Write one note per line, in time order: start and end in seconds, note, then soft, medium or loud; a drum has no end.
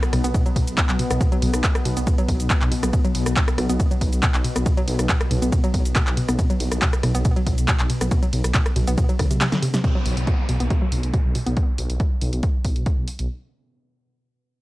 0.00 9.89 B2 medium
0.00 9.89 B3 medium
0.00 cross-stick loud
0.00 ride medium
0.00 shaker soft
0.13 0.21 B1 medium
0.13 0.16 B2 medium
0.13 cross-stick medium
0.13 open hi-hat loud
0.13 ride medium
0.24 0.32 B1 medium
0.24 0.32 B3 medium
0.24 closed hi-hat medium
0.24 ride medium
0.24 shaker medium
0.34 0.43 B2 medium
0.34 kick loud
0.34 closed hi-hat medium
0.34 ride medium
0.34 shaker medium
0.46 0.49 F#3 loud
0.46 ride medium
0.46 shaker soft
0.56 0.65 B1 loud
0.56 0.59 B2 medium
0.56 kick medium
0.56 open hi-hat loud
0.56 ride medium
0.67 0.75 B1 medium
0.67 closed hi-hat medium
0.67 ride medium
0.67 shaker medium
0.78 kick loud
0.78 clap loud
0.78 closed hi-hat medium
0.78 ride medium
0.78 shaker medium
0.89 0.97 B1 medium
0.89 clap medium
0.89 ride medium
0.89 shaker soft
0.99 1.02 B2 medium
0.99 open hi-hat loud
0.99 ride medium
1.10 1.18 B1 medium
1.10 1.18 B3 medium
1.10 cross-stick loud
1.10 closed hi-hat medium
1.10 ride medium
1.10 shaker medium
1.21 1.29 B2 medium
1.21 kick loud
1.21 closed hi-hat medium
1.21 ride medium
1.21 shaker medium
1.32 1.35 F#3 loud
1.32 ride medium
1.32 shaker soft
1.42 1.51 B1 loud
1.42 1.46 B2 medium
1.42 open hi-hat loud
1.42 ride medium
1.54 1.61 B1 medium
1.54 cross-stick loud
1.54 closed hi-hat medium
1.54 ride medium
1.54 shaker medium
1.64 kick loud
1.64 clap loud
1.64 closed hi-hat medium
1.64 ride medium
1.64 shaker medium
1.75 cross-stick loud
1.75 ride medium
1.75 shaker soft
1.85 1.94 B1 medium
1.85 1.89 B2 medium
1.85 open hi-hat loud
1.85 ride medium
1.97 2.05 B1 medium
1.97 2.04 B3 medium
1.97 closed hi-hat medium
1.97 ride medium
1.97 shaker medium
2.07 2.15 B2 medium
2.07 kick loud
2.07 closed hi-hat medium
2.07 ride medium
2.07 shaker medium
2.18 2.21 F#3 loud
2.18 ride medium
2.18 shaker soft
2.29 2.37 B1 medium
2.29 2.32 B2 medium
2.29 kick medium
2.29 open hi-hat loud
2.29 ride medium
2.40 2.48 B1 medium
2.40 closed hi-hat medium
2.40 ride medium
2.40 shaker medium
2.50 kick loud
2.50 clap loud
2.50 closed hi-hat medium
2.50 ride medium
2.50 shaker medium
2.62 2.69 B1 medium
2.62 clap medium
2.62 ride medium
2.62 shaker soft
2.72 2.75 B2 medium
2.72 open hi-hat loud
2.72 ride medium
2.83 2.91 B1 medium
2.83 2.91 B3 medium
2.83 cross-stick loud
2.83 closed hi-hat medium
2.83 ride medium
2.83 shaker medium
2.93 3.02 B2 medium
2.93 kick loud
2.93 closed hi-hat medium
2.93 ride medium
2.93 shaker medium
3.05 3.08 F#3 loud
3.05 ride medium
3.05 shaker soft
3.15 3.24 B1 loud
3.15 open hi-hat loud
3.15 ride medium
3.26 3.34 B1 medium
3.26 cross-stick loud
3.26 closed hi-hat medium
3.26 ride medium
3.26 shaker medium
3.36 3.40 B2 medium
3.36 kick loud
3.36 clap loud
3.36 closed hi-hat medium
3.36 ride medium
3.36 shaker medium
3.48 cross-stick loud
3.48 ride medium
3.48 shaker soft
3.58 3.67 B1 medium
3.58 3.61 B2 medium
3.58 cross-stick medium
3.58 open hi-hat loud
3.58 ride medium
3.69 3.77 B1 medium
3.69 3.77 B3 medium
3.69 closed hi-hat medium
3.69 ride medium
3.69 shaker medium
3.80 3.88 B2 medium
3.80 kick loud
3.80 closed hi-hat medium
3.80 ride medium
3.80 shaker medium
3.91 3.94 F#3 loud
3.91 ride medium
3.91 shaker soft
4.01 4.10 B1 medium
4.01 kick medium
4.01 open hi-hat loud
4.01 ride medium
4.13 4.20 B1 medium
4.13 closed hi-hat medium
4.13 ride medium
4.13 shaker medium
4.23 4.26 B2 medium
4.23 kick loud
4.23 clap loud
4.23 closed hi-hat medium
4.23 ride medium
4.23 shaker medium
4.34 4.42 B1 medium
4.34 clap medium
4.34 ride medium
4.34 shaker soft
4.44 4.48 B2 medium
4.44 open hi-hat loud
4.44 ride medium
4.56 4.64 B1 medium
4.56 4.63 B3 medium
4.56 cross-stick medium
4.56 closed hi-hat medium
4.56 ride medium
4.56 shaker medium
4.66 4.74 B2 medium
4.66 kick loud
4.66 closed hi-hat medium
4.66 ride medium
4.66 shaker medium
4.77 4.80 F#3 loud
4.77 ride medium
4.77 shaker soft
4.88 4.96 B1 loud
4.88 open hi-hat loud
4.88 ride medium
4.99 5.07 B1 medium
4.99 cross-stick medium
4.99 closed hi-hat medium
4.99 ride medium
4.99 shaker medium
5.09 5.12 B2 medium
5.09 kick loud
5.09 clap loud
5.09 closed hi-hat medium
5.09 ride medium
5.09 shaker medium
5.21 cross-stick loud
5.21 ride medium
5.21 shaker soft
5.31 5.39 B1 medium
5.31 5.34 B2 medium
5.31 open hi-hat loud
5.31 ride medium
5.42 5.50 B1 medium
5.42 5.50 B3 medium
5.42 closed hi-hat medium
5.42 ride medium
5.42 shaker medium
5.52 5.61 B2 medium
5.52 kick loud
5.52 closed hi-hat medium
5.52 ride medium
5.52 shaker medium
5.64 5.67 F#3 loud
5.64 ride medium
5.64 shaker soft
5.74 5.83 B1 medium
5.74 kick medium
5.74 open hi-hat loud
5.74 ride medium
5.85 5.93 B1 medium
5.85 closed hi-hat medium
5.85 ride medium
5.85 shaker medium
5.95 5.99 B2 medium
5.95 kick loud
5.95 clap loud
5.95 closed hi-hat medium
5.95 ride medium
5.95 shaker medium
6.07 6.15 B1 medium
6.07 clap medium
6.07 ride medium
6.07 shaker soft
6.17 6.20 B2 medium
6.17 open hi-hat loud
6.17 ride medium
6.28 6.36 B1 medium
6.28 6.36 B3 medium
6.28 cross-stick medium
6.28 closed hi-hat medium
6.28 ride medium
6.28 shaker medium
6.39 6.47 B2 medium
6.39 kick loud
6.39 closed hi-hat medium
6.39 ride medium
6.39 shaker medium
6.50 6.53 F#3 loud
6.50 ride medium
6.50 shaker soft
6.60 6.69 B1 loud
6.60 open hi-hat loud
6.60 ride medium
6.72 6.79 B1 medium
6.72 cross-stick medium
6.72 closed hi-hat medium
6.72 ride medium
6.72 shaker medium
6.82 6.85 B2 medium
6.82 kick loud
6.82 clap loud
6.82 closed hi-hat medium
6.82 ride medium
6.82 shaker medium
6.93 cross-stick medium
6.93 ride medium
6.93 shaker soft
7.03 7.12 B1 loud
7.03 7.07 B2 medium
7.03 cross-stick medium
7.03 open hi-hat loud
7.03 ride medium
7.15 7.23 B1 medium
7.15 7.22 B3 medium
7.15 closed hi-hat medium
7.15 ride medium
7.15 shaker medium
7.25 7.33 B2 medium
7.25 kick loud
7.25 closed hi-hat medium
7.25 ride medium
7.25 shaker medium
7.36 7.39 F#3 loud
7.36 ride medium
7.36 shaker soft
7.47 7.55 B1 loud
7.47 kick medium
7.47 open hi-hat loud
7.47 ride medium
7.58 7.66 B1 medium
7.58 closed hi-hat medium
7.58 ride medium
7.58 shaker medium
7.68 7.72 B2 medium
7.68 kick loud
7.68 clap loud
7.68 closed hi-hat medium
7.68 ride medium
7.68 shaker medium
7.79 7.87 B1 medium
7.79 clap medium
7.79 ride medium
7.79 shaker soft
7.90 7.93 B2 medium
7.90 open hi-hat loud
7.90 ride medium
8.01 8.09 B1 medium
8.01 8.09 B3 medium
8.01 cross-stick medium
8.01 closed hi-hat medium
8.01 ride medium
8.01 shaker medium
8.11 8.20 B2 medium
8.11 kick loud
8.11 closed hi-hat medium
8.11 ride medium
8.11 shaker medium
8.23 8.26 F#3 loud
8.23 ride medium
8.23 shaker soft
8.33 8.42 B1 loud
8.33 open hi-hat loud
8.33 ride medium
8.44 8.52 B1 medium
8.44 cross-stick medium
8.44 closed hi-hat medium
8.44 ride medium
8.44 shaker medium
8.54 8.58 B2 medium
8.54 kick loud
8.54 clap loud
8.54 closed hi-hat medium
8.54 ride medium
8.54 shaker soft
8.66 cross-stick medium
8.66 ride medium
8.66 shaker soft
8.76 8.85 B1 medium
8.76 8.79 B2 medium
8.76 open hi-hat loud
8.76 ride medium
8.87 8.95 B1 medium
8.87 8.95 B3 medium
8.87 closed hi-hat medium
8.87 ride medium
8.87 shaker medium
8.98 9.06 B2 medium
8.98 kick loud
8.98 closed hi-hat medium
8.98 ride medium
8.98 shaker medium
9.09 9.12 F#3 loud
9.09 ride medium
9.09 shaker soft
9.19 9.28 B1 medium
9.19 9.25 D3 medium
9.19 kick medium
9.19 cross-stick medium
9.19 open hi-hat loud
9.19 ride medium
9.31 9.38 B1 medium
9.31 9.36 C3 medium
9.31 closed hi-hat medium
9.31 ride medium
9.31 shaker medium
9.41 9.46 C3 loud
9.41 snare medium
9.41 clap loud
9.41 closed hi-hat medium
9.41 ride medium
9.41 shaker medium
9.52 9.57 D3 loud
9.52 snare medium
9.52 ride medium
9.52 shaker soft
9.62 9.68 C3 medium
9.62 open hi-hat loud
9.62 ride medium
9.74 9.77 C3 medium
9.74 snare medium
9.74 closed hi-hat medium
9.74 ride medium
9.74 shaker medium
9.84 9.92 B2 medium
9.84 kick loud
9.84 closed hi-hat medium
9.84 downlifter medium
9.95 9.98 F#3 loud
10.06 10.14 B1 loud
10.06 open hi-hat loud
10.17 10.25 B1 medium
10.17 closed hi-hat medium
10.27 10.30 B2 medium
10.27 kick loud
10.27 closed hi-hat medium
10.49 10.57 B1 medium
10.49 10.52 B2 medium
10.49 open hi-hat loud
10.60 10.68 B1 medium
10.60 10.68 B3 medium
10.60 closed hi-hat medium
10.70 10.79 B2 medium
10.70 kick loud
10.70 closed hi-hat medium
10.82 10.85 F#3 loud
10.92 11.01 B1 medium
10.92 open hi-hat loud
11.03 11.11 B1 medium
11.03 closed hi-hat medium
11.14 11.17 B2 medium
11.14 kick loud
11.14 closed hi-hat medium
11.25 11.33 B1 medium
11.35 11.38 B2 medium
11.35 open hi-hat loud
11.46 11.54 B1 medium
11.46 11.54 B3 medium
11.46 closed hi-hat medium
11.57 kick loud
11.57 closed hi-hat medium
11.78 11.87 B1 loud
11.78 open hi-hat loud
11.90 11.97 B1 medium
11.90 closed hi-hat medium
12.00 kick loud
12.00 closed hi-hat medium
12.21 12.30 B1 medium
12.21 open hi-hat loud
12.33 12.41 B1 medium
12.33 closed hi-hat medium
12.43 kick loud
12.43 closed hi-hat medium
12.64 12.73 B1 medium
12.64 kick medium
12.64 open hi-hat loud
12.76 12.84 B1 medium
12.76 closed hi-hat medium
12.86 kick loud
12.86 closed hi-hat medium
12.98 13.05 B1 medium
13.08 open hi-hat loud
13.19 13.27 B1 medium
13.19 closed hi-hat medium